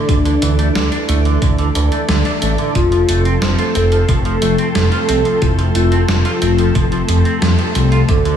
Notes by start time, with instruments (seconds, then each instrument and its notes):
Already playing: string machine E3 A3 D4 A4 D5, soft synth lead A4
0.09 analog synth bass D2, clean electric guitar D3, soft synth lead D4, kick, closed hi-hat
0.25 clean electric guitar D3, closed hi-hat
0.42 analog synth bass D2, clean electric guitar E3, soft synth lead E4, closed hi-hat
0.59 clean electric guitar A3, closed hi-hat
0.75 analog synth bass D2, clean electric guitar D3, soft synth lead E4, snare, closed hi-hat
0.92 clean electric guitar D4, closed hi-hat
1.09 analog synth bass D2, clean electric guitar A3, closed hi-hat
1.25 clean electric guitar D3, closed hi-hat
1.42 analog synth bass D2, clean electric guitar D3, kick, closed hi-hat
1.58 clean electric guitar D3, closed hi-hat
1.75 analog synth bass D2, clean electric guitar E3, closed hi-hat
1.92 clean electric guitar A3, closed hi-hat
2.09 analog synth bass D2, clean electric guitar D3, snare, closed hi-hat
2.25 clean electric guitar D4, closed hi-hat
2.42 analog synth bass A1, clean electric guitar A3, closed hi-hat
2.58 clean electric guitar D3, closed hi-hat
2.75 analog synth bass F1, clean electric guitar F3, string machine F3 C4 C5, soft synth lead F4, kick, closed hi-hat
2.92 clean electric guitar F3, closed hi-hat
3.09 analog synth bass F1, clean electric guitar A3, closed hi-hat
3.25 clean electric guitar C4, closed hi-hat
3.42 analog synth bass F1, clean electric guitar F3, soft synth lead C5, snare, closed hi-hat
3.59 clean electric guitar F4, closed hi-hat
3.75 analog synth bass F1, clean electric guitar C4, soft synth lead A4, closed hi-hat
3.92 clean electric guitar F3, closed hi-hat
4.08 analog synth bass F1, clean electric guitar F3, soft synth lead A4, kick, closed hi-hat
4.25 clean electric guitar F3, closed hi-hat
4.42 analog synth bass F1, clean electric guitar A3, closed hi-hat
4.58 clean electric guitar C4, closed hi-hat
4.75 analog synth bass F1, clean electric guitar F3, soft synth lead A4, snare, closed hi-hat
4.92 clean electric guitar F4, closed hi-hat
5.09 analog synth bass C2, clean electric guitar C4, closed hi-hat
5.25 clean electric guitar F3, closed hi-hat
5.42 analog synth bass F1, clean electric guitar F3, soft synth lead E4, kick, closed hi-hat
5.59 clean electric guitar F3, closed hi-hat
5.75 analog synth bass F1, clean electric guitar A3, soft synth lead F4, closed hi-hat
5.92 clean electric guitar C4, closed hi-hat
6.08 analog synth bass F1, clean electric guitar F3, snare, closed hi-hat
6.25 clean electric guitar F4, closed hi-hat
6.42 analog synth bass F1, clean electric guitar C4, closed hi-hat
6.58 clean electric guitar F3, closed hi-hat
6.75 analog synth bass F1, clean electric guitar F3, kick, closed hi-hat
6.92 clean electric guitar F3, closed hi-hat
7.09 analog synth bass F1, clean electric guitar F3, closed hi-hat
7.25 clean electric guitar C4, closed hi-hat
7.42 analog synth bass F2, clean electric guitar F3, snare, closed hi-hat
7.59 clean electric guitar F3, closed hi-hat
7.75 analog synth bass C2, clean electric guitar F3, closed hi-hat
7.92 clean electric guitar F4, closed hi-hat
8.09 analog synth bass D2, clean electric guitar D3, string machine E3 D4 D5, soft synth lead A4, kick, closed hi-hat
8.25 clean electric guitar D3, closed hi-hat